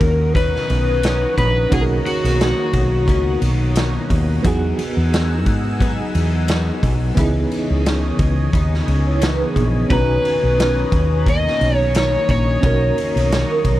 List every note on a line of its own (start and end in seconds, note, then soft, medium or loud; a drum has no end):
0.00 0.56 D#2 medium
0.00 0.35 D#3 soft
0.00 0.36 A#3 medium
0.00 0.35 C#4 medium
0.00 1.67 C#4 medium
0.00 1.67 D#4 medium
0.00 1.68 F#4 medium
0.00 0.35 A#4 loud
0.00 4.41 C#5 medium
0.00 4.41 F#5 medium
0.00 1.69 A#5 medium
0.00 4.41 A#5 medium
0.00 4.41 D#6 loud
0.00 kick medium
0.00 ride medium
0.34 1.03 B2 medium
0.34 1.04 D#3 medium
0.34 1.05 C#4 medium
0.34 1.34 B4 loud
0.34 kick medium
0.34 ride medium
0.56 snare soft
0.70 1.24 B1 medium
0.70 ride medium
1.03 1.72 D#3 medium
1.03 1.73 C#4 medium
1.03 snare loud
1.03 ride medium
1.37 1.65 A#1 loud
1.37 1.70 B4 loud
1.37 kick medium
1.37 ride medium
1.70 1.99 B1 loud
1.70 2.05 B2 medium
1.70 2.06 D#3 medium
1.70 2.06 A#3 medium
1.70 4.40 C#4 medium
1.70 4.41 D#4 medium
1.70 4.41 F#4 medium
1.70 1.82 G#4 medium
1.70 kick loud
1.70 ride medium
1.74 2.04 C#4 medium
1.74 1.81 G#4 medium
1.81 4.46 A#4 medium
2.05 3.08 D#3 soft
2.05 3.08 A#3 medium
2.05 3.08 C#4 medium
2.05 3.39 F#4 medium
2.05 ride medium
2.24 2.52 B1 medium
2.24 ride soft
2.41 snare loud
2.41 ride medium
2.73 3.08 B1 loud
2.73 kick medium
2.73 ride medium
3.07 3.35 C#2 loud
3.07 3.74 B2 medium
3.07 3.76 D#3 medium
3.07 3.76 A#3 medium
3.07 3.78 C#4 medium
3.07 kick medium
3.07 ride medium
3.42 3.97 B1 medium
3.42 ride medium
3.75 4.43 B2 medium
3.75 4.44 D#3 medium
3.75 4.45 A#3 medium
3.75 4.45 C#4 medium
3.75 snare loud
3.75 ride medium
4.10 4.38 D#2 loud
4.10 kick medium
4.10 open hi-hat medium
4.10 ride medium
4.43 4.72 E2 loud
4.43 4.78 E3 loud
4.43 4.79 F#3 loud
4.43 7.13 B3 medium
4.43 4.79 B3 medium
4.43 7.13 D#4 medium
4.43 7.15 D#4 medium
4.43 4.78 D#4 loud
4.43 7.14 F#4 medium
4.43 4.76 G#4 loud
4.43 7.15 F#5 medium
4.43 7.15 G#5 medium
4.43 7.15 E6 loud
4.43 kick loud
4.43 hi-hat pedal medium
4.43 ride medium
4.48 7.15 G#4 medium
4.77 5.82 D#4 medium
4.77 5.82 G#4 medium
4.77 ride medium
4.81 5.81 B3 medium
4.97 5.46 E2 medium
5.13 snare loud
5.13 ride medium
5.46 6.01 G#2 medium
5.46 kick medium
5.46 ride medium
5.79 6.47 F#3 medium
5.79 6.49 B3 medium
5.79 6.50 D#4 medium
5.79 kick loud
5.79 ride medium
5.83 6.51 G#4 medium
6.15 6.70 E2 loud
6.15 ride medium
6.48 7.17 F#3 medium
6.48 7.18 B3 medium
6.48 7.20 D#4 medium
6.48 10.02 G#4 medium
6.48 snare loud
6.48 ride medium
6.83 7.10 B1 loud
6.83 kick medium
6.83 open hi-hat medium
6.83 ride medium
7.15 7.45 C#2 loud
7.15 8.51 C#3 medium
7.15 8.54 E3 medium
7.15 9.85 B3 medium
7.15 9.86 D#4 medium
7.15 9.87 E4 medium
7.15 13.80 C#5 medium
7.15 9.88 D#5 medium
7.15 12.59 G#5 medium
7.15 13.80 D#6 medium
7.15 kick loud
7.15 hi-hat pedal medium
7.15 ride medium
7.19 8.55 B3 loud
7.19 8.55 D#4 loud
7.19 9.88 G#4 medium
7.51 ride medium
7.70 8.10 C#2 medium
7.86 snare loud
7.86 ride medium
8.19 8.47 C#2 medium
8.19 kick medium
8.19 ride medium
8.52 8.81 D#2 medium
8.52 9.20 C#3 medium
8.52 9.23 B3 medium
8.52 9.24 D#4 medium
8.52 kick loud
8.52 ride medium
8.74 snare soft
8.88 9.42 C#2 medium
8.88 ride soft
9.07 9.22 E4 medium
9.07 9.21 C#5 medium
9.21 9.88 C#3 medium
9.21 9.91 E3 medium
9.21 9.98 B3 medium
9.21 9.40 D#4 medium
9.21 9.94 D#4 medium
9.21 9.40 B4 medium
9.21 snare loud
9.21 ride medium
9.41 9.88 B3 medium
9.41 9.88 G#4 medium
9.56 9.83 A#1 loud
9.56 kick medium
9.56 ride medium
9.88 10.17 B1 loud
9.88 11.25 B2 medium
9.88 11.27 D#3 medium
9.88 12.58 C#4 medium
9.88 9.97 D4 soft
9.88 12.59 F#4 medium
9.88 11.31 B4 medium
9.88 13.80 A#5 medium
9.88 kick loud
9.88 ride medium
9.93 11.29 C#4 loud
9.93 12.61 D#4 medium
9.93 12.60 A#5 medium
10.25 ride medium
10.43 10.83 B1 medium
10.60 snare loud
10.60 ride medium
10.92 11.47 D#2 medium
10.92 kick medium
10.92 ride medium
11.26 11.94 B2 medium
11.26 11.95 D#3 medium
11.26 11.95 A#3 medium
11.26 11.96 C#4 medium
11.26 11.76 D#5 loud
11.26 kick loud
11.26 ride medium
11.47 snare soft
11.61 12.15 B1 medium
11.61 ride medium
11.76 11.92 C#5 loud
11.94 12.63 D#3 medium
11.94 12.63 A#3 medium
11.94 12.64 C#4 medium
11.94 12.30 C#5 medium
11.94 snare loud
11.94 ride medium
12.29 12.56 A#1 loud
12.29 13.62 C#5 loud
12.29 kick medium
12.29 ride medium
12.61 12.90 B1 loud
12.61 12.97 B2 medium
12.61 12.97 D#3 medium
12.61 12.97 A#3 medium
12.61 13.80 C#4 medium
12.61 13.80 D#4 medium
12.61 13.80 F#4 medium
12.61 13.80 C#6 medium
12.61 kick loud
12.61 ride medium
12.65 12.95 C#4 medium
12.65 13.80 A#4 medium
12.96 13.80 D#3 soft
12.96 13.80 A#3 medium
12.96 13.80 C#4 medium
12.96 ride medium
13.16 13.43 B1 medium
13.16 ride soft
13.32 snare loud
13.32 ride medium
13.50 13.80 C#4 medium
13.50 13.80 A#4 medium
13.65 13.80 B1 loud
13.65 kick medium
13.65 ride medium